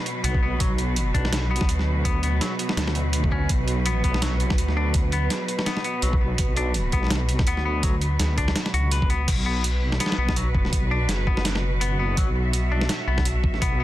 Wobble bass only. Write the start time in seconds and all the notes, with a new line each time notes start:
0.24 B1
0.60 B1
1.14 B1
1.69 D2
2.77 D2
3.50 B1
4.04 B1
4.58 D2
6.03 B1
6.39 B1
6.93 B1
7.47 D2
8.20 D2
8.73 C#2
9.28 B1
10.18 B1
10.73 B1
11.09 F#1
12.17 B1
13.07 B1
13.62 B1